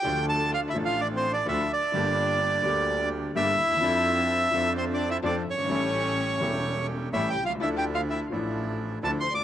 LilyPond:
<<
  \new Staff \with { instrumentName = "Bandoneon" } { \time 4/4 \key d \minor \tempo 4 = 127 g''8 a''8 \tuplet 3/2 { f''8 e''8 f''8 d''8 c''8 d''8 } e''8 d''8~ | d''2~ d''8 r8 e''4~ | e''2 \tuplet 3/2 { c''8 d''8 e''8 } d''8 cis''8~ | cis''2~ cis''8 r8 \tuplet 3/2 { e''8 g''8 f''8 } |
\tuplet 3/2 { e''8 g''8 f''8 } e''8 r4. \tuplet 3/2 { a''8 c'''8 d'''8 } | }
  \new Staff \with { instrumentName = "Violin section" } { \time 4/4 \key d \minor g'8 a'8 \tuplet 3/2 { f'8 e'8 f'8 d'8 c'8 d'8 } e'8 d'8~ | d'2~ d'8 r8 e'4~ | e'2 \tuplet 3/2 { c'8 d'8 e'8 } d'8 cis'8~ | cis'2~ cis'8 r8 \tuplet 3/2 { e'8 g'8 f'8 } |
\tuplet 3/2 { e'8 g'8 f'8 } e'8 r4. \tuplet 3/2 { a'8 c''8 d''8 } | }
  \new Staff \with { instrumentName = "Bandoneon" } { \time 4/4 \key d \minor <a d' f'>4. <a d' f'>4. <a d' f'>8 r8 | <bes d' g'>4. <bes d' g'>4. <bes d' g'>8 r8 | <f c' d'>4. <c' d' f'>4. <c' d' f'>8 r8 | <a cis' g'>4. <a cis' g'>4. <a cis' g'>8 r8 |
<f d' e'>4. <f d' e'>4. <f d' e'>8 r8 | }
  \new Staff \with { instrumentName = "Grand piano" } { \clef bass \time 4/4 \key d \minor <d, d f a d' a'>4. <a,, a, f a d' a'>4. <d, d f a d' a'>8 r8 | <g,, g, d g bes g'>4. <d, d g bes g'>4. <g,, g, d g bes g'>8 r32 d,32 ees,32 e,32 | <f, f c' d' a'>4. <f, f c' d' a'>4. <f, f c' d' a'>8 r32 fis,,32 g,,32 gis,,32 | <a,, a, g cis' e' a'>4. <e,, e, g cis' e' a'>4. <a,, a, g cis' e' a'>8 r32 b,,32 c,32 cis,32 |
<d, d f d' e' a'>4. <a,, a, f d' e' a'>4. <d, d f d' e' a'>8 r32 cis,32 d,32 r32 | }
  \new Staff \with { instrumentName = "Double bass" } { \clef bass \time 4/4 \key d \minor d,4. a,,4. d,8 r8 | g,,4. d,4. g,,8 ees,8 | f,4. f,4. f,8 g,,8 | a,,4. e,,4. a,,8 c,8 |
d,4. a,,4. d,8 d,8 | }
>>